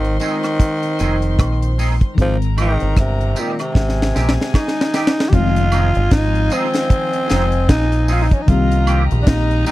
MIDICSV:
0, 0, Header, 1, 8, 480
1, 0, Start_track
1, 0, Key_signature, -4, "minor"
1, 0, Tempo, 788436
1, 1327, Time_signature, 4, 2, 24, 8
1, 5914, End_track
2, 0, Start_track
2, 0, Title_t, "String section"
2, 0, Program_c, 0, 48
2, 0, Note_on_c, 0, 72, 82
2, 0, Note_on_c, 0, 84, 94
2, 1302, Note_off_c, 0, 72, 0
2, 1303, Note_off_c, 0, 84, 0
2, 1326, Note_on_c, 0, 82, 93
2, 1327, Note_on_c, 0, 70, 80
2, 2267, Note_off_c, 0, 82, 0
2, 2268, Note_off_c, 0, 70, 0
2, 2283, Note_on_c, 0, 80, 98
2, 2284, Note_on_c, 0, 68, 84
2, 3225, Note_off_c, 0, 80, 0
2, 3226, Note_off_c, 0, 68, 0
2, 3240, Note_on_c, 0, 80, 101
2, 3241, Note_on_c, 0, 65, 89
2, 3242, Note_on_c, 0, 75, 89
2, 5137, Note_off_c, 0, 80, 0
2, 5138, Note_off_c, 0, 65, 0
2, 5138, Note_off_c, 0, 75, 0
2, 5161, Note_on_c, 0, 67, 94
2, 5161, Note_on_c, 0, 75, 88
2, 5165, Note_on_c, 0, 82, 106
2, 5914, Note_off_c, 0, 67, 0
2, 5914, Note_off_c, 0, 75, 0
2, 5914, Note_off_c, 0, 82, 0
2, 5914, End_track
3, 0, Start_track
3, 0, Title_t, "Tenor saxophone"
3, 0, Program_c, 1, 66
3, 0, Note_on_c, 1, 51, 99
3, 118, Note_off_c, 1, 51, 0
3, 121, Note_on_c, 1, 51, 95
3, 1060, Note_off_c, 1, 51, 0
3, 1348, Note_on_c, 1, 53, 102
3, 1445, Note_off_c, 1, 53, 0
3, 1588, Note_on_c, 1, 51, 98
3, 1802, Note_off_c, 1, 51, 0
3, 1820, Note_on_c, 1, 48, 85
3, 2062, Note_on_c, 1, 46, 80
3, 2071, Note_off_c, 1, 48, 0
3, 2199, Note_on_c, 1, 48, 89
3, 2208, Note_off_c, 1, 46, 0
3, 2771, Note_off_c, 1, 48, 0
3, 2775, Note_on_c, 1, 63, 88
3, 3220, Note_on_c, 1, 67, 64
3, 3229, Note_off_c, 1, 63, 0
3, 3252, Note_on_c, 1, 65, 101
3, 3261, Note_off_c, 1, 67, 0
3, 3732, Note_on_c, 1, 63, 88
3, 3742, Note_off_c, 1, 65, 0
3, 3977, Note_on_c, 1, 60, 93
3, 3986, Note_off_c, 1, 63, 0
3, 4684, Note_off_c, 1, 60, 0
3, 4688, Note_on_c, 1, 63, 92
3, 4950, Note_on_c, 1, 65, 74
3, 4959, Note_off_c, 1, 63, 0
3, 5013, Note_on_c, 1, 63, 74
3, 5023, Note_off_c, 1, 65, 0
3, 5073, Note_on_c, 1, 61, 73
3, 5082, Note_off_c, 1, 63, 0
3, 5123, Note_on_c, 1, 63, 72
3, 5132, Note_off_c, 1, 61, 0
3, 5169, Note_on_c, 1, 65, 98
3, 5178, Note_off_c, 1, 63, 0
3, 5495, Note_off_c, 1, 65, 0
3, 5615, Note_on_c, 1, 62, 73
3, 5649, Note_on_c, 1, 63, 94
3, 5658, Note_off_c, 1, 62, 0
3, 5884, Note_off_c, 1, 63, 0
3, 5888, Note_on_c, 1, 63, 100
3, 5914, Note_off_c, 1, 63, 0
3, 5914, End_track
4, 0, Start_track
4, 0, Title_t, "Clean electric guitar"
4, 0, Program_c, 2, 27
4, 127, Note_on_c, 2, 56, 90
4, 130, Note_on_c, 2, 60, 96
4, 131, Note_on_c, 2, 63, 94
4, 134, Note_on_c, 2, 68, 100
4, 220, Note_off_c, 2, 56, 0
4, 222, Note_off_c, 2, 60, 0
4, 222, Note_off_c, 2, 63, 0
4, 223, Note_off_c, 2, 68, 0
4, 608, Note_on_c, 2, 56, 81
4, 610, Note_on_c, 2, 60, 93
4, 613, Note_on_c, 2, 63, 89
4, 614, Note_on_c, 2, 68, 91
4, 701, Note_off_c, 2, 56, 0
4, 701, Note_off_c, 2, 60, 0
4, 703, Note_off_c, 2, 63, 0
4, 704, Note_off_c, 2, 68, 0
4, 1086, Note_on_c, 2, 56, 77
4, 1090, Note_on_c, 2, 60, 82
4, 1090, Note_on_c, 2, 63, 87
4, 1093, Note_on_c, 2, 68, 97
4, 1180, Note_off_c, 2, 56, 0
4, 1182, Note_off_c, 2, 60, 0
4, 1182, Note_off_c, 2, 63, 0
4, 1183, Note_off_c, 2, 68, 0
4, 1563, Note_on_c, 2, 51, 76
4, 1567, Note_on_c, 2, 56, 81
4, 1568, Note_on_c, 2, 60, 85
4, 1571, Note_on_c, 2, 67, 95
4, 1658, Note_off_c, 2, 51, 0
4, 1660, Note_off_c, 2, 56, 0
4, 1661, Note_off_c, 2, 60, 0
4, 1662, Note_off_c, 2, 67, 0
4, 2042, Note_on_c, 2, 51, 83
4, 2044, Note_on_c, 2, 56, 86
4, 2049, Note_on_c, 2, 60, 86
4, 2050, Note_on_c, 2, 67, 94
4, 2138, Note_off_c, 2, 51, 0
4, 2139, Note_off_c, 2, 56, 0
4, 2141, Note_off_c, 2, 60, 0
4, 2142, Note_off_c, 2, 67, 0
4, 2524, Note_on_c, 2, 51, 79
4, 2526, Note_on_c, 2, 56, 82
4, 2529, Note_on_c, 2, 60, 88
4, 2531, Note_on_c, 2, 67, 86
4, 2619, Note_off_c, 2, 51, 0
4, 2620, Note_off_c, 2, 56, 0
4, 2621, Note_off_c, 2, 60, 0
4, 2622, Note_off_c, 2, 67, 0
4, 3000, Note_on_c, 2, 51, 78
4, 3002, Note_on_c, 2, 56, 84
4, 3005, Note_on_c, 2, 60, 85
4, 3008, Note_on_c, 2, 67, 95
4, 3097, Note_off_c, 2, 51, 0
4, 3098, Note_off_c, 2, 56, 0
4, 3099, Note_off_c, 2, 60, 0
4, 3101, Note_off_c, 2, 67, 0
4, 3483, Note_on_c, 2, 53, 88
4, 3485, Note_on_c, 2, 60, 86
4, 3488, Note_on_c, 2, 63, 99
4, 3491, Note_on_c, 2, 68, 94
4, 3578, Note_off_c, 2, 53, 0
4, 3579, Note_off_c, 2, 60, 0
4, 3580, Note_off_c, 2, 63, 0
4, 3582, Note_off_c, 2, 68, 0
4, 3962, Note_on_c, 2, 53, 88
4, 3965, Note_on_c, 2, 60, 100
4, 3967, Note_on_c, 2, 63, 99
4, 3967, Note_on_c, 2, 68, 97
4, 4058, Note_off_c, 2, 53, 0
4, 4059, Note_off_c, 2, 60, 0
4, 4060, Note_off_c, 2, 63, 0
4, 4060, Note_off_c, 2, 68, 0
4, 4439, Note_on_c, 2, 53, 91
4, 4443, Note_on_c, 2, 60, 91
4, 4446, Note_on_c, 2, 63, 89
4, 4447, Note_on_c, 2, 68, 91
4, 4536, Note_off_c, 2, 53, 0
4, 4538, Note_off_c, 2, 60, 0
4, 4539, Note_off_c, 2, 63, 0
4, 4540, Note_off_c, 2, 68, 0
4, 4921, Note_on_c, 2, 53, 94
4, 4924, Note_on_c, 2, 60, 91
4, 4926, Note_on_c, 2, 63, 101
4, 4928, Note_on_c, 2, 68, 97
4, 5017, Note_off_c, 2, 53, 0
4, 5018, Note_off_c, 2, 60, 0
4, 5019, Note_off_c, 2, 63, 0
4, 5020, Note_off_c, 2, 68, 0
4, 5401, Note_on_c, 2, 51, 78
4, 5402, Note_on_c, 2, 58, 90
4, 5406, Note_on_c, 2, 60, 89
4, 5409, Note_on_c, 2, 67, 91
4, 5496, Note_off_c, 2, 51, 0
4, 5497, Note_off_c, 2, 58, 0
4, 5498, Note_off_c, 2, 60, 0
4, 5500, Note_off_c, 2, 67, 0
4, 5883, Note_on_c, 2, 51, 82
4, 5885, Note_on_c, 2, 58, 88
4, 5888, Note_on_c, 2, 60, 98
4, 5890, Note_on_c, 2, 67, 103
4, 5914, Note_off_c, 2, 51, 0
4, 5914, Note_off_c, 2, 58, 0
4, 5914, Note_off_c, 2, 60, 0
4, 5914, Note_off_c, 2, 67, 0
4, 5914, End_track
5, 0, Start_track
5, 0, Title_t, "FM electric piano"
5, 0, Program_c, 3, 5
5, 0, Control_c, 3, 64, 127
5, 0, Note_on_c, 3, 51, 68
5, 0, Note_on_c, 3, 56, 61
5, 0, Note_on_c, 3, 60, 61
5, 0, Note_on_c, 3, 65, 71
5, 1295, Note_off_c, 3, 51, 0
5, 1300, Note_off_c, 3, 56, 0
5, 1305, Note_off_c, 3, 60, 0
5, 1307, Note_on_c, 3, 51, 65
5, 1311, Note_off_c, 3, 65, 0
5, 1318, Note_on_c, 3, 56, 59
5, 1331, Note_on_c, 3, 60, 59
5, 1334, Control_c, 3, 64, 0
5, 1342, Note_on_c, 3, 68, 73
5, 1455, Control_c, 3, 64, 127
5, 3212, Note_off_c, 3, 51, 0
5, 3218, Note_off_c, 3, 56, 0
5, 3225, Note_off_c, 3, 60, 0
5, 3225, Note_on_c, 3, 51, 67
5, 3230, Note_off_c, 3, 68, 0
5, 3233, Note_on_c, 3, 53, 68
5, 3244, Note_on_c, 3, 56, 65
5, 3252, Note_on_c, 3, 60, 62
5, 3255, Control_c, 3, 64, 0
5, 3262, Note_on_c, 3, 65, 77
5, 3351, Control_c, 3, 64, 127
5, 5130, Note_off_c, 3, 51, 0
5, 5134, Note_off_c, 3, 53, 0
5, 5139, Note_off_c, 3, 56, 0
5, 5143, Note_off_c, 3, 60, 0
5, 5148, Note_off_c, 3, 65, 0
5, 5148, Note_on_c, 3, 51, 66
5, 5156, Note_on_c, 3, 55, 61
5, 5166, Note_on_c, 3, 58, 65
5, 5172, Control_c, 3, 64, 0
5, 5176, Note_on_c, 3, 60, 65
5, 5186, Note_on_c, 3, 67, 79
5, 5268, Control_c, 3, 64, 127
5, 5914, Note_off_c, 3, 51, 0
5, 5914, Note_off_c, 3, 55, 0
5, 5914, Note_off_c, 3, 58, 0
5, 5914, Note_off_c, 3, 60, 0
5, 5914, Note_off_c, 3, 67, 0
5, 5914, End_track
6, 0, Start_track
6, 0, Title_t, "Fingered electric bass"
6, 0, Program_c, 4, 33
6, 0, Note_on_c, 4, 32, 86
6, 107, Note_off_c, 4, 32, 0
6, 612, Note_on_c, 4, 29, 93
6, 829, Note_off_c, 4, 29, 0
6, 849, Note_on_c, 4, 34, 91
6, 1203, Note_off_c, 4, 34, 0
6, 1331, Note_on_c, 4, 32, 100
6, 1685, Note_off_c, 4, 32, 0
6, 1718, Note_on_c, 4, 31, 87
6, 1804, Note_off_c, 4, 31, 0
6, 1812, Note_on_c, 4, 31, 91
6, 2029, Note_off_c, 4, 31, 0
6, 2288, Note_on_c, 4, 32, 83
6, 2507, Note_off_c, 4, 32, 0
6, 2535, Note_on_c, 4, 34, 93
6, 2659, Note_off_c, 4, 34, 0
6, 3248, Note_on_c, 4, 29, 108
6, 3603, Note_off_c, 4, 29, 0
6, 3630, Note_on_c, 4, 31, 85
6, 3720, Note_off_c, 4, 31, 0
6, 3728, Note_on_c, 4, 32, 96
6, 3947, Note_off_c, 4, 32, 0
6, 4451, Note_on_c, 4, 29, 83
6, 4668, Note_off_c, 4, 29, 0
6, 4688, Note_on_c, 4, 34, 91
6, 5042, Note_off_c, 4, 34, 0
6, 5169, Note_on_c, 4, 36, 113
6, 5522, Note_off_c, 4, 36, 0
6, 5552, Note_on_c, 4, 34, 97
6, 5640, Note_off_c, 4, 34, 0
6, 5648, Note_on_c, 4, 34, 99
6, 5866, Note_off_c, 4, 34, 0
6, 5914, End_track
7, 0, Start_track
7, 0, Title_t, "Muted clean electric guitar strokes"
7, 510, Note_on_c, 9, 29, 50
7, 571, Note_off_c, 9, 29, 0
7, 2424, Note_on_c, 9, 29, 52
7, 2485, Note_off_c, 9, 29, 0
7, 4344, Note_on_c, 9, 29, 57
7, 4405, Note_off_c, 9, 29, 0
7, 5914, End_track
8, 0, Start_track
8, 0, Title_t, "Drums"
8, 28, Note_on_c, 9, 42, 44
8, 89, Note_off_c, 9, 42, 0
8, 120, Note_on_c, 9, 42, 71
8, 129, Note_on_c, 9, 54, 68
8, 181, Note_off_c, 9, 42, 0
8, 190, Note_off_c, 9, 54, 0
8, 264, Note_on_c, 9, 42, 55
8, 265, Note_on_c, 9, 76, 62
8, 271, Note_on_c, 9, 37, 66
8, 325, Note_off_c, 9, 42, 0
8, 326, Note_off_c, 9, 76, 0
8, 331, Note_off_c, 9, 37, 0
8, 363, Note_on_c, 9, 36, 103
8, 364, Note_on_c, 9, 42, 89
8, 424, Note_off_c, 9, 36, 0
8, 425, Note_off_c, 9, 42, 0
8, 504, Note_on_c, 9, 42, 52
8, 565, Note_off_c, 9, 42, 0
8, 603, Note_on_c, 9, 42, 75
8, 608, Note_on_c, 9, 37, 70
8, 608, Note_on_c, 9, 54, 52
8, 663, Note_off_c, 9, 42, 0
8, 669, Note_off_c, 9, 37, 0
8, 669, Note_off_c, 9, 54, 0
8, 743, Note_on_c, 9, 42, 45
8, 804, Note_off_c, 9, 42, 0
8, 845, Note_on_c, 9, 36, 96
8, 847, Note_on_c, 9, 42, 79
8, 849, Note_on_c, 9, 37, 96
8, 851, Note_on_c, 9, 76, 65
8, 905, Note_off_c, 9, 36, 0
8, 908, Note_off_c, 9, 42, 0
8, 910, Note_off_c, 9, 37, 0
8, 911, Note_off_c, 9, 76, 0
8, 989, Note_on_c, 9, 42, 53
8, 1049, Note_off_c, 9, 42, 0
8, 1089, Note_on_c, 9, 46, 66
8, 1090, Note_on_c, 9, 54, 58
8, 1150, Note_off_c, 9, 46, 0
8, 1150, Note_off_c, 9, 54, 0
8, 1225, Note_on_c, 9, 36, 88
8, 1226, Note_on_c, 9, 42, 47
8, 1286, Note_off_c, 9, 36, 0
8, 1286, Note_off_c, 9, 42, 0
8, 1327, Note_on_c, 9, 36, 107
8, 1330, Note_on_c, 9, 42, 59
8, 1387, Note_off_c, 9, 36, 0
8, 1391, Note_off_c, 9, 42, 0
8, 1473, Note_on_c, 9, 42, 57
8, 1533, Note_off_c, 9, 42, 0
8, 1569, Note_on_c, 9, 42, 73
8, 1569, Note_on_c, 9, 54, 53
8, 1569, Note_on_c, 9, 76, 79
8, 1630, Note_off_c, 9, 42, 0
8, 1630, Note_off_c, 9, 54, 0
8, 1630, Note_off_c, 9, 76, 0
8, 1706, Note_on_c, 9, 42, 41
8, 1767, Note_off_c, 9, 42, 0
8, 1805, Note_on_c, 9, 42, 92
8, 1806, Note_on_c, 9, 36, 102
8, 1810, Note_on_c, 9, 37, 94
8, 1866, Note_off_c, 9, 42, 0
8, 1867, Note_off_c, 9, 36, 0
8, 1871, Note_off_c, 9, 37, 0
8, 1953, Note_on_c, 9, 42, 45
8, 2014, Note_off_c, 9, 42, 0
8, 2045, Note_on_c, 9, 42, 71
8, 2048, Note_on_c, 9, 54, 70
8, 2106, Note_off_c, 9, 42, 0
8, 2108, Note_off_c, 9, 54, 0
8, 2186, Note_on_c, 9, 42, 49
8, 2189, Note_on_c, 9, 76, 61
8, 2192, Note_on_c, 9, 37, 67
8, 2247, Note_off_c, 9, 42, 0
8, 2250, Note_off_c, 9, 76, 0
8, 2253, Note_off_c, 9, 37, 0
8, 2284, Note_on_c, 9, 36, 103
8, 2290, Note_on_c, 9, 38, 57
8, 2344, Note_off_c, 9, 36, 0
8, 2351, Note_off_c, 9, 38, 0
8, 2368, Note_on_c, 9, 38, 50
8, 2429, Note_off_c, 9, 38, 0
8, 2449, Note_on_c, 9, 38, 69
8, 2510, Note_off_c, 9, 38, 0
8, 2531, Note_on_c, 9, 38, 56
8, 2531, Note_on_c, 9, 54, 50
8, 2592, Note_off_c, 9, 38, 0
8, 2592, Note_off_c, 9, 54, 0
8, 2610, Note_on_c, 9, 38, 73
8, 2671, Note_off_c, 9, 38, 0
8, 2687, Note_on_c, 9, 38, 67
8, 2748, Note_off_c, 9, 38, 0
8, 2764, Note_on_c, 9, 36, 95
8, 2767, Note_on_c, 9, 76, 64
8, 2770, Note_on_c, 9, 38, 73
8, 2825, Note_off_c, 9, 36, 0
8, 2828, Note_off_c, 9, 76, 0
8, 2831, Note_off_c, 9, 38, 0
8, 2849, Note_on_c, 9, 38, 69
8, 2910, Note_off_c, 9, 38, 0
8, 2929, Note_on_c, 9, 38, 82
8, 2990, Note_off_c, 9, 38, 0
8, 3005, Note_on_c, 9, 54, 58
8, 3008, Note_on_c, 9, 38, 79
8, 3066, Note_off_c, 9, 54, 0
8, 3069, Note_off_c, 9, 38, 0
8, 3088, Note_on_c, 9, 38, 93
8, 3149, Note_off_c, 9, 38, 0
8, 3167, Note_on_c, 9, 38, 84
8, 3228, Note_off_c, 9, 38, 0
8, 3243, Note_on_c, 9, 42, 66
8, 3244, Note_on_c, 9, 36, 120
8, 3303, Note_off_c, 9, 42, 0
8, 3305, Note_off_c, 9, 36, 0
8, 3387, Note_on_c, 9, 42, 62
8, 3448, Note_off_c, 9, 42, 0
8, 3481, Note_on_c, 9, 54, 58
8, 3481, Note_on_c, 9, 76, 81
8, 3484, Note_on_c, 9, 42, 74
8, 3542, Note_off_c, 9, 54, 0
8, 3542, Note_off_c, 9, 76, 0
8, 3545, Note_off_c, 9, 42, 0
8, 3621, Note_on_c, 9, 42, 46
8, 3682, Note_off_c, 9, 42, 0
8, 3721, Note_on_c, 9, 42, 100
8, 3723, Note_on_c, 9, 36, 109
8, 3726, Note_on_c, 9, 38, 98
8, 3782, Note_off_c, 9, 42, 0
8, 3784, Note_off_c, 9, 36, 0
8, 3787, Note_off_c, 9, 38, 0
8, 3867, Note_on_c, 9, 42, 50
8, 3928, Note_off_c, 9, 42, 0
8, 3958, Note_on_c, 9, 42, 79
8, 3966, Note_on_c, 9, 54, 68
8, 4019, Note_off_c, 9, 42, 0
8, 4027, Note_off_c, 9, 54, 0
8, 4101, Note_on_c, 9, 42, 57
8, 4107, Note_on_c, 9, 38, 68
8, 4162, Note_off_c, 9, 42, 0
8, 4168, Note_off_c, 9, 38, 0
8, 4202, Note_on_c, 9, 36, 105
8, 4202, Note_on_c, 9, 42, 92
8, 4263, Note_off_c, 9, 36, 0
8, 4263, Note_off_c, 9, 42, 0
8, 4343, Note_on_c, 9, 42, 59
8, 4404, Note_off_c, 9, 42, 0
8, 4442, Note_on_c, 9, 42, 83
8, 4443, Note_on_c, 9, 54, 55
8, 4447, Note_on_c, 9, 38, 76
8, 4503, Note_off_c, 9, 42, 0
8, 4504, Note_off_c, 9, 54, 0
8, 4508, Note_off_c, 9, 38, 0
8, 4577, Note_on_c, 9, 42, 49
8, 4638, Note_off_c, 9, 42, 0
8, 4682, Note_on_c, 9, 36, 108
8, 4682, Note_on_c, 9, 42, 89
8, 4683, Note_on_c, 9, 38, 103
8, 4742, Note_off_c, 9, 42, 0
8, 4743, Note_off_c, 9, 36, 0
8, 4744, Note_off_c, 9, 38, 0
8, 4823, Note_on_c, 9, 42, 56
8, 4883, Note_off_c, 9, 42, 0
8, 4921, Note_on_c, 9, 54, 66
8, 4923, Note_on_c, 9, 46, 72
8, 4982, Note_off_c, 9, 54, 0
8, 4984, Note_off_c, 9, 46, 0
8, 5062, Note_on_c, 9, 36, 91
8, 5062, Note_on_c, 9, 42, 53
8, 5123, Note_off_c, 9, 36, 0
8, 5123, Note_off_c, 9, 42, 0
8, 5162, Note_on_c, 9, 42, 69
8, 5163, Note_on_c, 9, 36, 125
8, 5223, Note_off_c, 9, 42, 0
8, 5224, Note_off_c, 9, 36, 0
8, 5306, Note_on_c, 9, 42, 63
8, 5367, Note_off_c, 9, 42, 0
8, 5401, Note_on_c, 9, 54, 56
8, 5401, Note_on_c, 9, 76, 83
8, 5406, Note_on_c, 9, 42, 76
8, 5462, Note_off_c, 9, 54, 0
8, 5462, Note_off_c, 9, 76, 0
8, 5467, Note_off_c, 9, 42, 0
8, 5545, Note_on_c, 9, 42, 48
8, 5606, Note_off_c, 9, 42, 0
8, 5642, Note_on_c, 9, 42, 95
8, 5643, Note_on_c, 9, 36, 109
8, 5647, Note_on_c, 9, 38, 100
8, 5702, Note_off_c, 9, 42, 0
8, 5704, Note_off_c, 9, 36, 0
8, 5708, Note_off_c, 9, 38, 0
8, 5789, Note_on_c, 9, 42, 52
8, 5850, Note_off_c, 9, 42, 0
8, 5883, Note_on_c, 9, 42, 77
8, 5884, Note_on_c, 9, 54, 74
8, 5914, Note_off_c, 9, 42, 0
8, 5914, Note_off_c, 9, 54, 0
8, 5914, End_track
0, 0, End_of_file